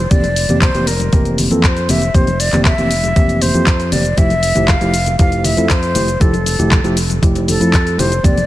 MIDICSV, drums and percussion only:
0, 0, Header, 1, 2, 480
1, 0, Start_track
1, 0, Key_signature, -1, "major"
1, 0, Tempo, 508475
1, 104, Time_signature, 4, 2, 24, 8
1, 7989, End_track
2, 0, Start_track
2, 0, Title_t, "Drums"
2, 103, Note_on_c, 9, 42, 85
2, 104, Note_on_c, 9, 36, 114
2, 108, Note_on_c, 9, 82, 39
2, 197, Note_off_c, 9, 42, 0
2, 199, Note_off_c, 9, 36, 0
2, 202, Note_off_c, 9, 82, 0
2, 221, Note_on_c, 9, 63, 90
2, 225, Note_on_c, 9, 42, 37
2, 229, Note_on_c, 9, 82, 19
2, 316, Note_off_c, 9, 63, 0
2, 319, Note_off_c, 9, 42, 0
2, 324, Note_off_c, 9, 82, 0
2, 343, Note_on_c, 9, 46, 104
2, 348, Note_on_c, 9, 82, 71
2, 438, Note_off_c, 9, 46, 0
2, 442, Note_off_c, 9, 82, 0
2, 463, Note_on_c, 9, 42, 37
2, 468, Note_on_c, 9, 82, 29
2, 471, Note_on_c, 9, 64, 84
2, 558, Note_off_c, 9, 42, 0
2, 562, Note_off_c, 9, 82, 0
2, 566, Note_off_c, 9, 64, 0
2, 582, Note_on_c, 9, 39, 105
2, 583, Note_on_c, 9, 63, 70
2, 584, Note_on_c, 9, 36, 107
2, 584, Note_on_c, 9, 42, 83
2, 589, Note_on_c, 9, 82, 39
2, 676, Note_off_c, 9, 39, 0
2, 677, Note_off_c, 9, 63, 0
2, 678, Note_off_c, 9, 36, 0
2, 679, Note_off_c, 9, 42, 0
2, 683, Note_off_c, 9, 82, 0
2, 704, Note_on_c, 9, 42, 38
2, 708, Note_on_c, 9, 82, 20
2, 798, Note_off_c, 9, 42, 0
2, 803, Note_off_c, 9, 82, 0
2, 823, Note_on_c, 9, 46, 103
2, 827, Note_on_c, 9, 82, 68
2, 917, Note_off_c, 9, 46, 0
2, 922, Note_off_c, 9, 82, 0
2, 941, Note_on_c, 9, 63, 87
2, 945, Note_on_c, 9, 42, 38
2, 949, Note_on_c, 9, 82, 29
2, 1035, Note_off_c, 9, 63, 0
2, 1039, Note_off_c, 9, 42, 0
2, 1043, Note_off_c, 9, 82, 0
2, 1063, Note_on_c, 9, 42, 81
2, 1064, Note_on_c, 9, 36, 125
2, 1067, Note_on_c, 9, 82, 41
2, 1157, Note_off_c, 9, 42, 0
2, 1159, Note_off_c, 9, 36, 0
2, 1162, Note_off_c, 9, 82, 0
2, 1184, Note_on_c, 9, 42, 37
2, 1188, Note_on_c, 9, 82, 21
2, 1278, Note_off_c, 9, 42, 0
2, 1282, Note_off_c, 9, 82, 0
2, 1302, Note_on_c, 9, 64, 74
2, 1305, Note_on_c, 9, 46, 103
2, 1309, Note_on_c, 9, 82, 69
2, 1397, Note_off_c, 9, 64, 0
2, 1399, Note_off_c, 9, 46, 0
2, 1403, Note_off_c, 9, 82, 0
2, 1425, Note_on_c, 9, 42, 35
2, 1429, Note_on_c, 9, 63, 68
2, 1429, Note_on_c, 9, 82, 32
2, 1519, Note_off_c, 9, 42, 0
2, 1523, Note_off_c, 9, 63, 0
2, 1524, Note_off_c, 9, 82, 0
2, 1544, Note_on_c, 9, 39, 114
2, 1545, Note_on_c, 9, 36, 105
2, 1546, Note_on_c, 9, 42, 87
2, 1550, Note_on_c, 9, 82, 42
2, 1638, Note_off_c, 9, 39, 0
2, 1640, Note_off_c, 9, 36, 0
2, 1640, Note_off_c, 9, 42, 0
2, 1645, Note_off_c, 9, 82, 0
2, 1667, Note_on_c, 9, 42, 35
2, 1671, Note_on_c, 9, 82, 20
2, 1761, Note_off_c, 9, 42, 0
2, 1766, Note_off_c, 9, 82, 0
2, 1781, Note_on_c, 9, 64, 75
2, 1784, Note_on_c, 9, 46, 110
2, 1788, Note_on_c, 9, 82, 73
2, 1793, Note_on_c, 9, 63, 87
2, 1875, Note_off_c, 9, 64, 0
2, 1878, Note_off_c, 9, 46, 0
2, 1883, Note_off_c, 9, 82, 0
2, 1887, Note_off_c, 9, 63, 0
2, 1905, Note_on_c, 9, 42, 35
2, 1910, Note_on_c, 9, 82, 31
2, 1999, Note_off_c, 9, 42, 0
2, 2004, Note_off_c, 9, 82, 0
2, 2025, Note_on_c, 9, 36, 117
2, 2026, Note_on_c, 9, 42, 83
2, 2031, Note_on_c, 9, 82, 42
2, 2119, Note_off_c, 9, 36, 0
2, 2121, Note_off_c, 9, 42, 0
2, 2125, Note_off_c, 9, 82, 0
2, 2145, Note_on_c, 9, 42, 34
2, 2146, Note_on_c, 9, 63, 86
2, 2149, Note_on_c, 9, 82, 21
2, 2240, Note_off_c, 9, 42, 0
2, 2240, Note_off_c, 9, 63, 0
2, 2244, Note_off_c, 9, 82, 0
2, 2264, Note_on_c, 9, 46, 105
2, 2268, Note_on_c, 9, 82, 70
2, 2358, Note_off_c, 9, 46, 0
2, 2363, Note_off_c, 9, 82, 0
2, 2385, Note_on_c, 9, 39, 34
2, 2387, Note_on_c, 9, 42, 37
2, 2387, Note_on_c, 9, 64, 87
2, 2392, Note_on_c, 9, 82, 31
2, 2479, Note_off_c, 9, 39, 0
2, 2481, Note_off_c, 9, 42, 0
2, 2481, Note_off_c, 9, 64, 0
2, 2486, Note_off_c, 9, 82, 0
2, 2503, Note_on_c, 9, 39, 104
2, 2504, Note_on_c, 9, 63, 66
2, 2506, Note_on_c, 9, 36, 100
2, 2506, Note_on_c, 9, 42, 80
2, 2510, Note_on_c, 9, 82, 40
2, 2598, Note_off_c, 9, 39, 0
2, 2599, Note_off_c, 9, 63, 0
2, 2600, Note_off_c, 9, 36, 0
2, 2600, Note_off_c, 9, 42, 0
2, 2605, Note_off_c, 9, 82, 0
2, 2626, Note_on_c, 9, 42, 36
2, 2630, Note_on_c, 9, 82, 21
2, 2720, Note_off_c, 9, 42, 0
2, 2725, Note_off_c, 9, 82, 0
2, 2744, Note_on_c, 9, 46, 104
2, 2748, Note_on_c, 9, 82, 68
2, 2838, Note_off_c, 9, 46, 0
2, 2842, Note_off_c, 9, 82, 0
2, 2865, Note_on_c, 9, 63, 96
2, 2867, Note_on_c, 9, 42, 36
2, 2871, Note_on_c, 9, 82, 31
2, 2960, Note_off_c, 9, 63, 0
2, 2961, Note_off_c, 9, 42, 0
2, 2965, Note_off_c, 9, 82, 0
2, 2985, Note_on_c, 9, 36, 122
2, 2985, Note_on_c, 9, 42, 78
2, 2989, Note_on_c, 9, 82, 40
2, 3079, Note_off_c, 9, 42, 0
2, 3080, Note_off_c, 9, 36, 0
2, 3084, Note_off_c, 9, 82, 0
2, 3107, Note_on_c, 9, 42, 35
2, 3111, Note_on_c, 9, 82, 20
2, 3201, Note_off_c, 9, 42, 0
2, 3206, Note_off_c, 9, 82, 0
2, 3223, Note_on_c, 9, 64, 70
2, 3224, Note_on_c, 9, 46, 102
2, 3229, Note_on_c, 9, 82, 70
2, 3317, Note_off_c, 9, 64, 0
2, 3319, Note_off_c, 9, 46, 0
2, 3323, Note_off_c, 9, 82, 0
2, 3342, Note_on_c, 9, 42, 36
2, 3345, Note_on_c, 9, 63, 67
2, 3346, Note_on_c, 9, 82, 32
2, 3437, Note_off_c, 9, 42, 0
2, 3440, Note_off_c, 9, 63, 0
2, 3441, Note_off_c, 9, 82, 0
2, 3460, Note_on_c, 9, 39, 110
2, 3463, Note_on_c, 9, 42, 83
2, 3465, Note_on_c, 9, 36, 96
2, 3467, Note_on_c, 9, 82, 39
2, 3555, Note_off_c, 9, 39, 0
2, 3557, Note_off_c, 9, 42, 0
2, 3559, Note_off_c, 9, 36, 0
2, 3562, Note_off_c, 9, 82, 0
2, 3583, Note_on_c, 9, 42, 37
2, 3588, Note_on_c, 9, 82, 21
2, 3678, Note_off_c, 9, 42, 0
2, 3682, Note_off_c, 9, 82, 0
2, 3699, Note_on_c, 9, 63, 83
2, 3701, Note_on_c, 9, 46, 105
2, 3706, Note_on_c, 9, 82, 74
2, 3710, Note_on_c, 9, 64, 81
2, 3793, Note_off_c, 9, 63, 0
2, 3796, Note_off_c, 9, 46, 0
2, 3800, Note_off_c, 9, 82, 0
2, 3804, Note_off_c, 9, 64, 0
2, 3823, Note_on_c, 9, 42, 33
2, 3827, Note_on_c, 9, 82, 29
2, 3917, Note_off_c, 9, 42, 0
2, 3921, Note_off_c, 9, 82, 0
2, 3942, Note_on_c, 9, 42, 84
2, 3944, Note_on_c, 9, 36, 112
2, 3946, Note_on_c, 9, 62, 46
2, 3946, Note_on_c, 9, 82, 45
2, 4036, Note_off_c, 9, 42, 0
2, 4038, Note_off_c, 9, 36, 0
2, 4041, Note_off_c, 9, 62, 0
2, 4041, Note_off_c, 9, 82, 0
2, 4061, Note_on_c, 9, 42, 35
2, 4066, Note_on_c, 9, 82, 21
2, 4069, Note_on_c, 9, 63, 85
2, 4156, Note_off_c, 9, 42, 0
2, 4160, Note_off_c, 9, 82, 0
2, 4163, Note_off_c, 9, 63, 0
2, 4180, Note_on_c, 9, 46, 99
2, 4184, Note_on_c, 9, 82, 74
2, 4274, Note_off_c, 9, 46, 0
2, 4279, Note_off_c, 9, 82, 0
2, 4300, Note_on_c, 9, 42, 37
2, 4302, Note_on_c, 9, 64, 86
2, 4305, Note_on_c, 9, 82, 32
2, 4395, Note_off_c, 9, 42, 0
2, 4396, Note_off_c, 9, 64, 0
2, 4399, Note_off_c, 9, 82, 0
2, 4418, Note_on_c, 9, 39, 99
2, 4421, Note_on_c, 9, 42, 77
2, 4423, Note_on_c, 9, 36, 97
2, 4425, Note_on_c, 9, 82, 41
2, 4428, Note_on_c, 9, 63, 67
2, 4433, Note_on_c, 9, 62, 64
2, 4513, Note_off_c, 9, 39, 0
2, 4515, Note_off_c, 9, 42, 0
2, 4518, Note_off_c, 9, 36, 0
2, 4520, Note_off_c, 9, 82, 0
2, 4523, Note_off_c, 9, 63, 0
2, 4528, Note_off_c, 9, 62, 0
2, 4540, Note_on_c, 9, 42, 36
2, 4545, Note_on_c, 9, 82, 21
2, 4635, Note_off_c, 9, 42, 0
2, 4639, Note_off_c, 9, 82, 0
2, 4660, Note_on_c, 9, 46, 97
2, 4664, Note_on_c, 9, 82, 73
2, 4754, Note_off_c, 9, 46, 0
2, 4759, Note_off_c, 9, 82, 0
2, 4780, Note_on_c, 9, 42, 37
2, 4785, Note_on_c, 9, 82, 31
2, 4787, Note_on_c, 9, 63, 82
2, 4789, Note_on_c, 9, 62, 46
2, 4875, Note_off_c, 9, 42, 0
2, 4879, Note_off_c, 9, 82, 0
2, 4881, Note_off_c, 9, 63, 0
2, 4883, Note_off_c, 9, 62, 0
2, 4900, Note_on_c, 9, 42, 79
2, 4903, Note_on_c, 9, 36, 122
2, 4905, Note_on_c, 9, 82, 42
2, 4995, Note_off_c, 9, 42, 0
2, 4997, Note_off_c, 9, 36, 0
2, 4999, Note_off_c, 9, 82, 0
2, 5022, Note_on_c, 9, 42, 36
2, 5026, Note_on_c, 9, 82, 20
2, 5116, Note_off_c, 9, 42, 0
2, 5121, Note_off_c, 9, 82, 0
2, 5138, Note_on_c, 9, 64, 80
2, 5140, Note_on_c, 9, 46, 99
2, 5145, Note_on_c, 9, 82, 72
2, 5232, Note_off_c, 9, 64, 0
2, 5235, Note_off_c, 9, 46, 0
2, 5239, Note_off_c, 9, 82, 0
2, 5261, Note_on_c, 9, 42, 36
2, 5265, Note_on_c, 9, 82, 33
2, 5267, Note_on_c, 9, 63, 63
2, 5270, Note_on_c, 9, 62, 78
2, 5355, Note_off_c, 9, 42, 0
2, 5360, Note_off_c, 9, 82, 0
2, 5362, Note_off_c, 9, 63, 0
2, 5364, Note_off_c, 9, 62, 0
2, 5377, Note_on_c, 9, 39, 106
2, 5379, Note_on_c, 9, 42, 85
2, 5383, Note_on_c, 9, 36, 95
2, 5384, Note_on_c, 9, 82, 44
2, 5471, Note_off_c, 9, 39, 0
2, 5474, Note_off_c, 9, 42, 0
2, 5477, Note_off_c, 9, 36, 0
2, 5478, Note_off_c, 9, 82, 0
2, 5500, Note_on_c, 9, 42, 37
2, 5504, Note_on_c, 9, 82, 22
2, 5594, Note_off_c, 9, 42, 0
2, 5599, Note_off_c, 9, 82, 0
2, 5617, Note_on_c, 9, 46, 101
2, 5618, Note_on_c, 9, 64, 79
2, 5619, Note_on_c, 9, 62, 43
2, 5622, Note_on_c, 9, 82, 75
2, 5629, Note_on_c, 9, 63, 91
2, 5712, Note_off_c, 9, 46, 0
2, 5712, Note_off_c, 9, 64, 0
2, 5713, Note_off_c, 9, 62, 0
2, 5716, Note_off_c, 9, 82, 0
2, 5724, Note_off_c, 9, 63, 0
2, 5741, Note_on_c, 9, 42, 35
2, 5746, Note_on_c, 9, 82, 31
2, 5836, Note_off_c, 9, 42, 0
2, 5840, Note_off_c, 9, 82, 0
2, 5862, Note_on_c, 9, 42, 88
2, 5863, Note_on_c, 9, 36, 109
2, 5866, Note_on_c, 9, 82, 47
2, 5956, Note_off_c, 9, 42, 0
2, 5957, Note_off_c, 9, 36, 0
2, 5961, Note_off_c, 9, 82, 0
2, 5980, Note_on_c, 9, 63, 85
2, 5984, Note_on_c, 9, 42, 37
2, 5988, Note_on_c, 9, 82, 21
2, 6075, Note_off_c, 9, 63, 0
2, 6078, Note_off_c, 9, 42, 0
2, 6083, Note_off_c, 9, 82, 0
2, 6102, Note_on_c, 9, 46, 96
2, 6102, Note_on_c, 9, 62, 68
2, 6106, Note_on_c, 9, 82, 78
2, 6196, Note_off_c, 9, 46, 0
2, 6196, Note_off_c, 9, 62, 0
2, 6201, Note_off_c, 9, 82, 0
2, 6224, Note_on_c, 9, 64, 86
2, 6225, Note_on_c, 9, 42, 36
2, 6230, Note_on_c, 9, 82, 34
2, 6319, Note_off_c, 9, 64, 0
2, 6320, Note_off_c, 9, 42, 0
2, 6324, Note_off_c, 9, 82, 0
2, 6339, Note_on_c, 9, 39, 101
2, 6341, Note_on_c, 9, 42, 80
2, 6343, Note_on_c, 9, 36, 100
2, 6344, Note_on_c, 9, 63, 64
2, 6346, Note_on_c, 9, 82, 43
2, 6433, Note_off_c, 9, 39, 0
2, 6436, Note_off_c, 9, 42, 0
2, 6437, Note_off_c, 9, 36, 0
2, 6438, Note_off_c, 9, 63, 0
2, 6440, Note_off_c, 9, 82, 0
2, 6460, Note_on_c, 9, 62, 46
2, 6463, Note_on_c, 9, 42, 38
2, 6467, Note_on_c, 9, 82, 23
2, 6554, Note_off_c, 9, 62, 0
2, 6557, Note_off_c, 9, 42, 0
2, 6562, Note_off_c, 9, 82, 0
2, 6578, Note_on_c, 9, 46, 100
2, 6583, Note_on_c, 9, 82, 76
2, 6673, Note_off_c, 9, 46, 0
2, 6677, Note_off_c, 9, 82, 0
2, 6696, Note_on_c, 9, 63, 88
2, 6701, Note_on_c, 9, 42, 36
2, 6705, Note_on_c, 9, 82, 33
2, 6791, Note_off_c, 9, 63, 0
2, 6795, Note_off_c, 9, 42, 0
2, 6799, Note_off_c, 9, 82, 0
2, 6822, Note_on_c, 9, 36, 111
2, 6823, Note_on_c, 9, 42, 82
2, 6827, Note_on_c, 9, 82, 43
2, 6916, Note_off_c, 9, 36, 0
2, 6917, Note_off_c, 9, 42, 0
2, 6922, Note_off_c, 9, 82, 0
2, 6942, Note_on_c, 9, 42, 38
2, 6947, Note_on_c, 9, 82, 22
2, 6948, Note_on_c, 9, 62, 69
2, 7037, Note_off_c, 9, 42, 0
2, 7041, Note_off_c, 9, 82, 0
2, 7042, Note_off_c, 9, 62, 0
2, 7061, Note_on_c, 9, 64, 74
2, 7064, Note_on_c, 9, 46, 92
2, 7068, Note_on_c, 9, 82, 75
2, 7156, Note_off_c, 9, 64, 0
2, 7158, Note_off_c, 9, 46, 0
2, 7163, Note_off_c, 9, 82, 0
2, 7184, Note_on_c, 9, 42, 38
2, 7184, Note_on_c, 9, 63, 61
2, 7189, Note_on_c, 9, 82, 33
2, 7279, Note_off_c, 9, 42, 0
2, 7279, Note_off_c, 9, 63, 0
2, 7283, Note_off_c, 9, 82, 0
2, 7297, Note_on_c, 9, 62, 46
2, 7301, Note_on_c, 9, 36, 96
2, 7302, Note_on_c, 9, 39, 104
2, 7304, Note_on_c, 9, 42, 88
2, 7309, Note_on_c, 9, 82, 44
2, 7391, Note_off_c, 9, 62, 0
2, 7396, Note_off_c, 9, 36, 0
2, 7396, Note_off_c, 9, 39, 0
2, 7399, Note_off_c, 9, 42, 0
2, 7403, Note_off_c, 9, 82, 0
2, 7426, Note_on_c, 9, 42, 37
2, 7431, Note_on_c, 9, 82, 22
2, 7521, Note_off_c, 9, 42, 0
2, 7525, Note_off_c, 9, 82, 0
2, 7544, Note_on_c, 9, 46, 95
2, 7544, Note_on_c, 9, 63, 87
2, 7547, Note_on_c, 9, 64, 80
2, 7549, Note_on_c, 9, 82, 79
2, 7638, Note_off_c, 9, 63, 0
2, 7639, Note_off_c, 9, 46, 0
2, 7641, Note_off_c, 9, 64, 0
2, 7643, Note_off_c, 9, 82, 0
2, 7665, Note_on_c, 9, 42, 38
2, 7669, Note_on_c, 9, 82, 33
2, 7759, Note_off_c, 9, 42, 0
2, 7764, Note_off_c, 9, 82, 0
2, 7782, Note_on_c, 9, 36, 110
2, 7783, Note_on_c, 9, 42, 93
2, 7785, Note_on_c, 9, 62, 69
2, 7788, Note_on_c, 9, 82, 47
2, 7876, Note_off_c, 9, 36, 0
2, 7878, Note_off_c, 9, 42, 0
2, 7880, Note_off_c, 9, 62, 0
2, 7882, Note_off_c, 9, 82, 0
2, 7906, Note_on_c, 9, 42, 39
2, 7908, Note_on_c, 9, 63, 90
2, 7910, Note_on_c, 9, 82, 22
2, 7989, Note_off_c, 9, 42, 0
2, 7989, Note_off_c, 9, 63, 0
2, 7989, Note_off_c, 9, 82, 0
2, 7989, End_track
0, 0, End_of_file